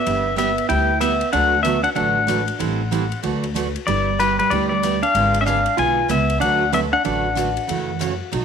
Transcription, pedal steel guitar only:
0.00 0.37 E5 loud
0.38 0.69 E5 loud
0.69 1.01 G5 loud
1.01 1.32 E5 loud
1.33 1.62 F#5 loud
1.63 1.83 E5 medium
1.84 1.89 F#5 medium
1.96 3.19 F#5 medium
3.87 4.20 D5 medium
4.20 4.38 B4 medium
4.39 4.52 B4 medium
4.50 4.68 D5 medium
4.69 5.03 D5 loud
5.03 5.41 F5 loud
5.41 5.46 E5 medium
5.47 5.76 F5 loud
5.79 6.11 G#5 loud
6.11 6.41 E5 medium
6.41 6.74 F#5 loud
6.74 6.79 E5 loud
6.93 7.04 F#5 loud

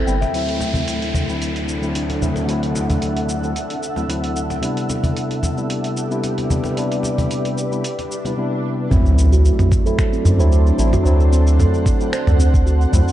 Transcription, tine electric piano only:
0.06 0.14 G3 medium
0.06 0.14 B3 medium
0.06 0.15 C4 medium
0.06 0.15 E4 loud
0.32 1.24 D2 medium
0.32 1.25 F#3 medium
0.32 1.25 A3 medium
0.32 1.26 C4 medium
0.36 1.26 E4 medium
1.28 1.79 D2 medium
1.28 1.79 F#3 medium
1.28 1.79 A3 medium
1.28 1.79 C4 medium
1.28 1.80 E4 medium
1.81 2.18 D2 medium
1.81 2.18 F#3 medium
1.81 2.19 A3 medium
1.81 2.19 C4 medium
1.81 2.19 E4 medium
2.21 2.45 D2 medium
2.21 2.45 F#3 medium
2.21 2.46 A3 medium
2.21 2.46 C4 medium
2.21 2.46 E4 medium
2.46 3.39 D2 medium
2.46 3.39 F#3 medium
2.46 3.40 A3 medium
2.46 3.40 C4 medium
2.50 3.41 E4 medium
3.42 3.52 D2 medium
3.42 3.53 F#3 medium
3.42 3.53 A3 medium
3.42 3.53 C4 medium
3.42 3.53 E4 medium
3.95 4.02 D2 medium
3.95 4.02 F#3 medium
3.95 4.03 A3 medium
3.95 4.03 C4 medium
3.95 4.03 E4 medium
4.08 4.59 D2 medium
4.08 4.59 F#3 medium
4.08 4.60 A3 medium
4.08 4.60 C4 medium
4.08 4.60 E4 medium
4.61 5.53 C3 medium
4.61 5.53 G3 medium
4.61 5.54 B3 medium
4.61 5.54 D4 medium
4.65 5.55 E4 medium
5.56 6.07 C3 medium
5.56 6.07 G3 medium
5.56 6.08 B3 medium
5.56 6.08 D4 medium
5.56 6.08 E4 medium
6.10 6.47 C3 medium
6.10 6.47 G3 medium
6.10 6.47 B3 medium
6.10 6.47 D4 medium
6.10 6.48 E4 medium
6.49 6.73 C3 medium
6.49 6.74 G3 medium
6.49 6.74 B3 medium
6.49 6.74 D4 medium
6.49 6.74 E4 medium
6.75 7.67 C3 medium
6.75 7.68 G3 medium
6.75 7.68 B3 medium
6.75 7.69 D4 medium
6.79 7.69 E4 medium
7.71 7.81 C3 medium
7.71 7.81 G3 medium
7.71 7.82 B3 medium
7.71 7.82 D4 medium
7.71 7.82 E4 medium
8.24 8.31 C3 medium
8.24 8.31 G3 medium
8.24 8.31 B3 medium
8.24 8.32 D4 medium
8.24 8.32 E4 medium
8.37 8.88 C3 medium
8.37 8.88 G3 medium
8.37 8.88 B3 medium
8.37 8.89 D4 medium
8.37 8.89 E4 medium
8.89 9.82 F#3 medium
8.89 9.82 A3 medium
8.89 9.83 C4 medium
8.89 9.83 E4 loud
9.85 10.36 F#3 medium
9.85 10.36 A3 medium
9.85 10.36 C4 medium
9.85 10.37 E4 medium
10.38 10.75 F#3 medium
10.38 10.76 A3 medium
10.38 10.76 C4 medium
10.38 10.76 E4 medium
10.78 11.02 F#3 medium
10.78 11.02 A3 medium
10.78 11.03 C4 medium
10.78 11.03 E4 medium
11.03 11.96 F#3 loud
11.03 11.96 A3 medium
11.03 11.97 C4 medium
11.07 11.98 E4 loud
11.99 12.10 F#3 medium
11.99 12.10 A3 medium
11.99 12.10 C4 medium
11.99 12.11 E4 medium
12.92 13.00 F#3 medium
12.92 13.00 A3 medium
12.92 13.00 C4 medium
12.92 13.01 E4 loud

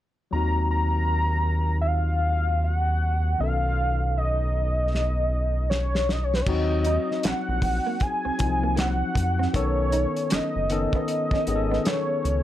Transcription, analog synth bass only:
0.33 3.36 D#2 medium
3.40 6.43 B1 medium
6.47 6.98 D#2 loud
7.24 7.34 A#1 soft
7.49 7.80 A#1 medium
8.25 8.31 C2 soft
8.41 9.03 C2 medium
9.16 9.48 F2 medium
9.55 10.06 B1 loud
10.31 10.41 F#1 soft
10.56 10.87 F#1 medium
11.32 11.38 G#1 soft
11.48 11.79 G#1 medium
12.25 12.43 C#2 medium

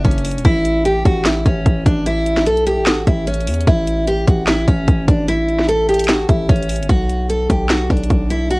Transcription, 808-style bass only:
0.05 0.37 F#1 loud
0.36 0.45 E1 loud
0.45 1.03 A1 loud
1.05 1.44 A1 loud
1.46 1.65 A1 loud
1.66 1.85 A1 loud
1.86 2.48 A1 loud
2.46 2.79 B1 loud
2.77 3.05 A1 loud
3.07 3.49 A1 loud
3.47 3.66 E2 loud
3.67 4.25 A1 loud
4.28 4.66 A1 loud
4.68 4.87 A1 loud
4.88 5.07 A1 loud
5.08 6.25 A1 loud
6.29 6.48 A1 loud
6.49 6.81 A1 loud
6.80 6.89 G1 loud
6.89 7.47 B1 loud
7.50 7.88 B1 loud
7.90 8.09 B1 loud
8.10 8.60 B1 loud

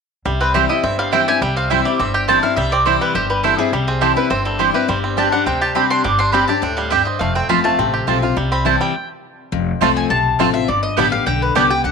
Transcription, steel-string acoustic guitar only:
0.25 0.81 C3 medium
0.54 0.69 E3 medium
0.54 0.69 G3 medium
0.54 0.69 C4 medium
0.54 0.69 E4 medium
0.70 0.84 C4 medium
0.70 0.83 E4 medium
0.83 1.39 G2 medium
1.12 1.27 E3 medium
1.12 1.27 G3 medium
1.12 1.27 C4 medium
1.12 1.27 E4 medium
1.28 1.42 C4 soft
1.28 1.41 E4 medium
1.42 1.97 C3 medium
1.71 1.85 E3 medium
1.71 1.85 G3 medium
1.71 1.85 C4 medium
1.71 1.84 E4 medium
1.85 2.00 C4 medium
1.85 1.99 E4 medium
2.00 2.55 G2 medium
2.28 2.43 E3 soft
2.28 2.43 G3 medium
2.28 2.43 C4 medium
2.28 2.42 E4 medium
2.43 2.58 C4 soft
2.43 2.57 E4 medium
2.57 3.12 C3 medium
2.85 3.13 E3 medium
2.85 3.14 G3 medium
2.85 3.14 C4 medium
2.85 3.14 E4 medium
3.15 3.70 G2 medium
3.44 3.58 E3 medium
3.44 3.59 G3 medium
3.44 3.59 C4 medium
3.44 3.57 E4 medium
3.58 3.73 C4 soft
3.58 3.72 E4 medium
3.73 4.28 C3 medium
4.02 4.16 E3 medium
4.02 4.17 G3 medium
4.02 4.17 C4 medium
4.02 4.15 E4 medium
4.16 4.31 C4 soft
4.16 4.30 E4 medium
4.30 4.86 G2 medium
4.59 4.74 E3 medium
4.59 4.74 G3 medium
4.59 4.74 C4 medium
4.59 4.72 E4 medium
4.74 4.89 C4 soft
4.74 4.88 E4 medium
4.88 5.44 G2 medium
5.17 5.32 G3 medium
5.17 5.32 C4 medium
5.17 5.32 D4 medium
5.17 5.31 G4 medium
5.32 5.47 D4 soft
5.32 5.46 G4 medium
5.47 6.02 C3 medium
5.75 6.03 G3 soft
5.75 6.03 C4 medium
5.75 6.04 D4 medium
5.75 6.04 G4 medium
6.04 6.60 G2 medium
6.33 6.48 G3 medium
6.33 6.48 C4 medium
6.33 6.48 D4 medium
6.33 6.47 G4 medium
6.48 6.63 D4 soft
6.48 6.62 G4 medium
6.63 6.90 A2 medium
6.92 7.19 G2 medium
7.21 7.76 F2 medium
7.49 7.64 F3 medium
7.49 7.64 A3 medium
7.49 7.64 C4 medium
7.49 7.63 F4 medium
7.64 7.79 C4 soft
7.64 7.78 F4 medium
7.79 8.34 C3 loud
8.07 8.22 F3 medium
8.07 8.22 A3 medium
8.07 8.22 C4 medium
8.07 8.21 F4 medium
8.22 8.37 C4 medium
8.22 8.36 F4 medium
8.37 8.92 C3 medium
8.65 8.93 E3 medium
8.65 8.93 G3 medium
8.65 8.93 C4 medium
8.65 8.94 E4 medium
9.52 10.07 F2 medium
9.81 10.09 F3 medium
9.81 10.09 A3 medium
9.81 10.09 C4 medium
9.81 10.10 F4 medium
10.10 10.65 C3 medium
10.39 10.54 F3 medium
10.39 10.54 A3 medium
10.39 10.54 C4 medium
10.39 10.53 F4 medium
10.54 10.68 C4 medium
10.54 10.67 F4 medium
10.68 11.23 G2 medium
10.97 11.12 D3 medium
10.97 11.12 G3 medium
10.97 11.12 B3 medium
10.97 11.11 G4 medium
11.12 11.26 B3 soft
11.12 11.26 G4 medium
11.27 11.54 D3 medium
11.55 11.70 D3 medium
11.55 11.70 G3 medium
11.55 11.70 B3 medium
11.55 11.69 G4 medium
11.70 11.84 B3 soft
11.70 11.84 G4 medium
11.85 11.92 D3 medium

